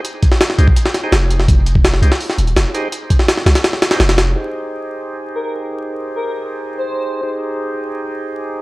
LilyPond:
<<
  \new Staff \with { instrumentName = "Digital synth lead" } { \time 4/4 \key aes \major \tempo 4 = 167 r1 | r1 | r1 | r2 r8. bes'16 bes'16 r8. |
r4 bes'8 r4 r16 c''4~ c''16~ | c''16 r2. r8. | }
  \new Staff \with { instrumentName = "Tonewheel organ" } { \time 4/4 \key aes \major r4. <ees' g' aes' c''>16 r4 <ees' g' aes' c''>8 r8. | r4. <ees' g' aes' c''>16 r4. r16 <ees' g' aes' c''>8 | r2 r8. <ees' g' aes' c''>8 r8. | <ees' g' aes' c''>1~ |
<ees' g' aes' c''>1 | <ees' g' aes' c''>1 | }
  \new Staff \with { instrumentName = "808-style bass" } { \clef bass \time 4/4 \key aes \major r4. c,8 r4 f,,4 | f,,4. c,8 r8 ees,,8 f,,8 r8 | r4. c,8 r4 f,,4 | r1 |
r1 | r1 | }
  \new DrumStaff \with { instrumentName = "Drums" } \drummode { \time 4/4 hh8 <hh bd>16 sn16 <hh sn>16 sn16 hh16 bd16 hh16 sn16 <hh sn>8 <hh sn>8 hh16 sn16 | <hh bd>8 hh16 bd16 <hh sn>16 sn16 hh16 sn16 hho16 sn16 hh16 hh16 <hh sn>8 hh8 | hh8 <hh bd>16 sn16 <hh sn>16 sn16 <hh sn>16 <hh sn>16 <hh sn>16 sn16 <hh sn>16 <hh sn>16 <hh sn>16 <hh sn>16 <hh sn>8 | r4 r4 r4 r4 |
r4 r4 r4 r4 | r4 r4 r4 r4 | }
>>